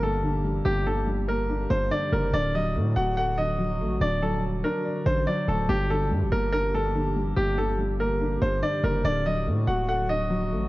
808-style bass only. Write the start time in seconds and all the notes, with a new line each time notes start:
Already playing: G1
0.65 G1
1.70 G1
2.12 F#1
2.33 D1
2.75 A2
2.96 D1
3.80 A1
4.01 D1
4.33 D#1
5.06 A1
5.48 D1
5.69 G1
6.11 G2
6.22 G1
6.32 G1
7.37 G1
8.42 G1
8.84 F#1
9.05 D1
9.47 A2
9.68 D1
10.51 A1